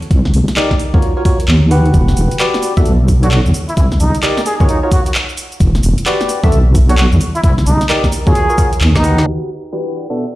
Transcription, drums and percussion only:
0.02 closed hi-hat
0.11 kick, closed hi-hat
0.25 snare
0.34 open hi-hat
0.48 snare, closed hi-hat
0.57 clap, closed hi-hat
0.71 kick, snare
0.79 open hi-hat
0.94 kick
1.02 closed hi-hat
1.25 kick, open hi-hat
1.40 closed hi-hat
1.48 clap
1.71 open hi-hat
1.86 closed hi-hat
1.94 kick, closed hi-hat, shaker
2.08 snare, shaker
2.17 open hi-hat, shaker
2.31 closed hi-hat, shaker
2.40 clap, closed hi-hat, shaker
2.54 snare, shaker
2.63 open hi-hat, shaker
2.77 kick, shaker
2.86 closed hi-hat, shaker
3.08 kick, open hi-hat, shaker
3.23 closed hi-hat, shaker
3.31 clap, shaker
3.46 shaker
3.54 open hi-hat, shaker
3.69 closed hi-hat, shaker
3.77 kick, closed hi-hat, shaker
3.92 snare, shaker
4.00 open hi-hat, shaker
4.15 closed hi-hat, shaker
4.23 clap, closed hi-hat, shaker
4.37 snare, shaker
4.46 open hi-hat, shaker
4.60 kick, shaker
4.69 closed hi-hat, shaker
4.92 kick, open hi-hat, shaker
5.06 closed hi-hat, shaker
5.15 clap, shaker
5.29 shaker
5.37 open hi-hat, shaker
5.52 closed hi-hat, shaker
5.60 kick, closed hi-hat, shaker
5.75 snare, shaker
5.83 open hi-hat, shaker
5.98 closed hi-hat, shaker
6.06 clap, closed hi-hat, shaker
6.21 snare, shaker
6.29 open hi-hat, shaker
6.44 kick, shaker
6.52 closed hi-hat, shaker
6.75 kick, open hi-hat, shaker
6.89 closed hi-hat, shaker
6.98 clap, shaker
7.12 shaker
7.21 open hi-hat, shaker
7.35 closed hi-hat, shaker
7.44 kick, closed hi-hat, shaker
7.58 snare, shaker
7.67 open hi-hat, shaker
7.81 snare, closed hi-hat, shaker
7.89 clap, closed hi-hat, shaker
8.04 kick, snare, shaker
8.12 open hi-hat, shaker
8.27 kick, shaker
8.35 closed hi-hat, shaker
8.50 shaker
8.58 kick, open hi-hat, shaker
8.73 closed hi-hat, shaker
8.81 clap, shaker
8.95 kick, snare, closed hi-hat, shaker
9.04 open hi-hat, shaker
9.18 snare, closed hi-hat, shaker
9.64 closed hi-hat
9.87 closed hi-hat
10.10 closed hi-hat

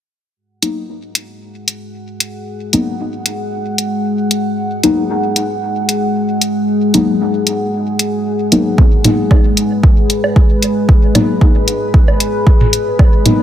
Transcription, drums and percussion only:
0.62 closed hi-hat
1.15 closed hi-hat
1.68 closed hi-hat
2.20 closed hi-hat
2.73 closed hi-hat
3.26 closed hi-hat
3.78 closed hi-hat
4.31 closed hi-hat
4.83 closed hi-hat
5.36 closed hi-hat
5.89 closed hi-hat
6.41 closed hi-hat
6.94 closed hi-hat
7.47 closed hi-hat
7.99 closed hi-hat
8.52 closed hi-hat
8.78 kick
9.04 closed hi-hat, mid tom
9.31 kick, low woodblock
9.57 closed hi-hat
9.83 kick
10.10 closed hi-hat
10.24 low woodblock
10.36 kick
10.62 closed hi-hat
10.89 kick
11.15 closed hi-hat, mid tom, low woodblock
11.41 kick
11.68 closed hi-hat
11.94 kick
12.08 low woodblock
12.20 closed hi-hat
12.47 kick
12.61 mid tom
12.73 closed hi-hat
12.99 kick, low woodblock
13.26 closed hi-hat, mid tom

